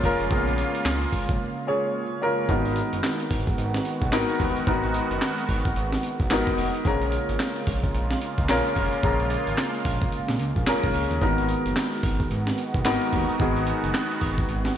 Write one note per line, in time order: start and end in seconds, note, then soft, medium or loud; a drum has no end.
0.00 0.16 F#1 loud
0.00 2.45 C#3 medium
0.00 2.45 G#3 medium
0.00 2.45 A#3 medium
0.00 0.04 C#4 medium
0.00 0.23 C#4 medium
0.00 0.04 F4 medium
0.00 2.45 F4 medium
0.00 0.05 G#4 medium
0.00 0.05 A#4 medium
0.00 kick medium
0.00 open hi-hat medium
0.00 shaker medium
0.04 0.23 F4 medium
0.04 0.23 G#4 medium
0.04 0.23 A#4 loud
0.20 0.28 F1 medium
0.20 closed hi-hat medium
0.20 shaker soft
0.30 0.64 A#1 loud
0.30 0.39 B3 medium
0.30 1.01 F4 medium
0.30 1.01 G#4 medium
0.30 1.01 A#4 medium
0.30 kick loud
0.30 closed hi-hat medium
0.30 tambourine medium
0.30 shaker medium
0.38 1.04 C#4 medium
0.47 closed hi-hat medium
0.47 shaker medium
0.58 closed hi-hat medium
0.58 tambourine medium
0.58 shaker soft
0.74 closed hi-hat medium
0.74 shaker medium
0.85 1.06 C#2 loud
0.85 snare loud
0.85 clap loud
0.85 closed hi-hat medium
0.85 tambourine loud
0.85 shaker medium
1.02 closed hi-hat medium
1.02 shaker soft
1.12 kick medium
1.12 open hi-hat medium
1.12 tambourine medium
1.29 1.37 A#1 medium
1.29 kick loud
1.29 closed hi-hat medium
1.29 shaker soft
1.67 2.02 C#4 medium
1.67 2.02 F4 medium
1.67 2.02 G#4 medium
1.67 2.02 C#5 loud
2.22 2.41 C#4 medium
2.22 2.41 F4 medium
2.22 2.41 G#4 medium
2.22 2.41 A#4 loud
2.49 2.82 G#1 loud
2.49 6.81 D#3 medium
2.49 6.81 G#3 medium
2.49 3.18 B3 medium
2.49 6.81 B3 medium
2.49 3.19 D#4 medium
2.49 6.81 F#4 medium
2.49 3.19 F#4 medium
2.49 3.19 A#4 medium
2.49 kick loud
2.49 closed hi-hat medium
2.49 tambourine medium
2.49 shaker medium
2.65 closed hi-hat medium
2.65 shaker medium
2.76 closed hi-hat medium
2.76 tambourine medium
2.76 shaker medium
2.92 3.01 F#1 medium
2.92 closed hi-hat medium
2.92 shaker medium
3.03 snare loud
3.03 clap medium
3.03 closed hi-hat medium
3.03 tambourine loud
3.03 shaker medium
3.20 closed hi-hat medium
3.20 shaker soft
3.31 3.51 G#1 medium
3.31 kick medium
3.31 open hi-hat medium
3.31 tambourine medium
3.47 kick loud
3.47 closed hi-hat medium
3.47 shaker soft
3.58 3.79 G#1 loud
3.58 closed hi-hat medium
3.58 tambourine medium
3.58 shaker medium
3.74 snare medium
3.74 closed hi-hat medium
3.74 shaker medium
3.85 closed hi-hat medium
3.85 tambourine medium
4.02 4.10 B1 loud
4.02 kick medium
4.02 closed hi-hat medium
4.02 shaker soft
4.12 4.25 G#1 medium
4.12 4.47 B3 loud
4.12 4.47 D#4 medium
4.12 4.48 F#4 medium
4.12 4.48 A#4 loud
4.12 snare loud
4.12 clap loud
4.12 closed hi-hat medium
4.12 tambourine loud
4.12 shaker medium
4.29 closed hi-hat soft
4.29 shaker medium
4.40 4.52 D#2 loud
4.40 kick medium
4.40 open hi-hat medium
4.56 closed hi-hat medium
4.56 shaker medium
4.67 5.00 G#1 loud
4.67 5.36 B3 medium
4.67 5.37 D#4 medium
4.67 5.37 F#4 medium
4.67 5.37 A#4 medium
4.67 kick loud
4.67 closed hi-hat medium
4.67 tambourine medium
4.67 shaker medium
4.84 closed hi-hat medium
4.84 shaker medium
4.94 closed hi-hat medium
4.94 tambourine medium
4.94 shaker soft
5.11 5.19 F#1 medium
5.11 closed hi-hat medium
5.11 shaker medium
5.21 snare loud
5.21 clap medium
5.21 closed hi-hat medium
5.21 tambourine loud
5.21 shaker medium
5.38 closed hi-hat medium
5.38 shaker soft
5.49 5.69 G#1 medium
5.49 kick medium
5.49 open hi-hat medium
5.49 tambourine medium
5.65 kick loud
5.65 closed hi-hat medium
5.65 shaker soft
5.76 5.97 G#1 loud
5.76 closed hi-hat medium
5.76 tambourine medium
5.76 shaker medium
5.92 snare medium
5.92 closed hi-hat soft
5.92 shaker medium
6.03 closed hi-hat medium
6.03 tambourine medium
6.20 6.28 B1 medium
6.20 kick medium
6.20 closed hi-hat medium
6.20 shaker medium
6.30 6.43 G#1 medium
6.30 6.66 B3 medium
6.30 6.66 D#4 medium
6.30 6.66 F#4 medium
6.30 6.66 A#4 loud
6.30 snare loud
6.30 clap loud
6.30 closed hi-hat medium
6.30 tambourine loud
6.30 shaker medium
6.47 kick medium
6.47 closed hi-hat soft
6.47 shaker soft
6.58 6.70 F1 loud
6.58 open hi-hat medium
6.74 closed hi-hat medium
6.74 shaker soft
6.85 7.18 A#1 loud
6.85 11.18 C#3 medium
6.85 14.78 G#3 medium
6.85 11.18 A#3 medium
6.85 7.55 C#4 medium
6.85 11.18 F4 medium
6.85 7.55 F4 medium
6.85 7.55 G#4 medium
6.85 7.56 A#4 loud
6.85 kick loud
6.85 closed hi-hat medium
6.85 tambourine medium
6.85 shaker medium
7.01 closed hi-hat medium
7.01 shaker medium
7.12 closed hi-hat medium
7.12 tambourine medium
7.12 shaker soft
7.29 7.37 G#1 loud
7.29 closed hi-hat medium
7.29 shaker soft
7.39 snare loud
7.39 clap medium
7.39 closed hi-hat medium
7.39 tambourine loud
7.39 shaker medium
7.56 closed hi-hat medium
7.56 shaker soft
7.67 7.88 A#1 loud
7.67 kick medium
7.67 open hi-hat medium
7.67 tambourine medium
7.83 kick loud
7.83 closed hi-hat medium
7.83 shaker soft
7.94 8.15 A#1 loud
7.94 closed hi-hat medium
7.94 tambourine medium
7.94 shaker medium
8.11 snare medium
8.11 closed hi-hat medium
8.11 shaker medium
8.21 closed hi-hat medium
8.21 tambourine medium
8.38 8.46 C#2 medium
8.38 kick medium
8.38 closed hi-hat medium
8.38 shaker soft
8.49 8.61 A#1 loud
8.49 8.84 C#4 loud
8.49 8.84 F4 medium
8.49 8.84 G#4 medium
8.49 8.84 A#4 loud
8.49 snare loud
8.49 clap loud
8.49 closed hi-hat medium
8.49 tambourine loud
8.49 shaker medium
8.65 closed hi-hat soft
8.65 shaker soft
8.76 8.89 F1 medium
8.76 kick medium
8.76 open hi-hat medium
8.93 closed hi-hat medium
8.93 shaker medium
9.03 9.36 A#1 loud
9.03 9.73 C#4 medium
9.03 9.73 F4 medium
9.03 9.73 G#4 medium
9.03 9.73 A#4 medium
9.03 kick loud
9.03 closed hi-hat medium
9.03 tambourine medium
9.03 shaker medium
9.20 closed hi-hat medium
9.20 shaker medium
9.30 closed hi-hat medium
9.30 tambourine medium
9.30 shaker soft
9.47 9.55 G#1 medium
9.47 closed hi-hat medium
9.47 shaker medium
9.57 snare loud
9.57 clap loud
9.57 closed hi-hat medium
9.57 tambourine loud
9.57 shaker medium
9.74 closed hi-hat medium
9.74 shaker soft
9.85 10.06 A#1 medium
9.85 kick medium
9.85 open hi-hat medium
9.85 tambourine medium
9.85 shaker soft
10.02 kick loud
10.02 closed hi-hat medium
10.02 shaker medium
10.12 closed hi-hat medium
10.12 tambourine medium
10.12 shaker medium
10.28 10.37 A#1 loud
10.28 snare medium
10.28 closed hi-hat medium
10.28 shaker medium
10.39 10.52 C#2 loud
10.39 closed hi-hat medium
10.39 tambourine medium
10.39 shaker soft
10.56 10.64 A#1 medium
10.56 kick medium
10.56 closed hi-hat medium
10.56 shaker medium
10.67 11.02 C#4 loud
10.67 11.02 F4 medium
10.67 11.02 G#4 medium
10.67 11.02 A#4 loud
10.67 snare loud
10.67 clap loud
10.67 closed hi-hat medium
10.67 tambourine loud
10.67 shaker medium
10.83 10.92 B1 medium
10.83 kick medium
10.83 closed hi-hat soft
10.83 shaker soft
10.94 11.07 C#2 medium
10.94 open hi-hat medium
10.94 shaker medium
11.11 11.19 D#2 medium
11.11 closed hi-hat medium
11.11 shaker medium
11.21 11.55 G#1 loud
11.21 14.78 D#3 medium
11.21 11.91 B3 medium
11.21 14.78 B3 medium
11.21 11.91 D#4 medium
11.21 14.78 F#4 medium
11.21 11.91 F#4 medium
11.21 11.92 A#4 medium
11.21 kick loud
11.21 closed hi-hat medium
11.21 tambourine medium
11.21 shaker medium
11.38 closed hi-hat medium
11.38 shaker medium
11.49 closed hi-hat medium
11.49 tambourine medium
11.49 shaker soft
11.65 11.74 F#1 medium
11.65 closed hi-hat medium
11.65 shaker soft
11.76 snare loud
11.76 clap medium
11.76 closed hi-hat medium
11.76 tambourine loud
11.76 shaker medium
11.93 closed hi-hat medium
11.93 shaker soft
12.03 12.24 G#1 medium
12.03 kick medium
12.03 open hi-hat medium
12.03 tambourine medium
12.20 kick loud
12.20 closed hi-hat medium
12.20 shaker medium
12.31 12.51 G#1 loud
12.31 closed hi-hat medium
12.31 tambourine medium
12.31 shaker medium
12.47 snare medium
12.47 closed hi-hat medium
12.47 shaker medium
12.58 closed hi-hat medium
12.58 tambourine medium
12.74 12.83 B1 medium
12.74 kick medium
12.74 closed hi-hat soft
12.74 shaker medium
12.85 12.98 G#1 medium
12.85 13.20 B3 loud
12.85 13.20 D#4 medium
12.85 13.20 F#4 medium
12.85 13.21 A#4 loud
12.85 snare loud
12.85 clap medium
12.85 closed hi-hat medium
12.85 tambourine loud
12.85 shaker medium
13.01 closed hi-hat soft
13.01 shaker soft
13.13 13.25 D#2 loud
13.13 kick medium
13.13 open hi-hat medium
13.29 closed hi-hat medium
13.29 shaker medium
13.39 13.73 G#1 loud
13.39 14.09 B3 medium
13.39 14.09 D#4 medium
13.39 14.10 F#4 medium
13.39 14.10 G#4 medium
13.39 kick loud
13.39 closed hi-hat medium
13.39 tambourine medium
13.39 shaker medium
13.56 closed hi-hat medium
13.56 shaker soft
13.67 closed hi-hat medium
13.67 tambourine medium
13.67 shaker soft
13.84 13.92 F#1 loud
13.84 closed hi-hat medium
13.84 shaker medium
13.94 snare loud
13.94 clap medium
13.94 closed hi-hat medium
13.94 tambourine loud
13.94 shaker medium
14.11 closed hi-hat medium
14.11 shaker soft
14.21 14.42 G#1 medium
14.21 kick medium
14.21 open hi-hat medium
14.21 tambourine medium
14.38 kick loud
14.38 closed hi-hat medium
14.38 shaker soft
14.49 14.70 G#1 loud
14.49 closed hi-hat medium
14.49 tambourine medium
14.49 shaker medium
14.65 snare medium
14.65 closed hi-hat medium
14.65 shaker medium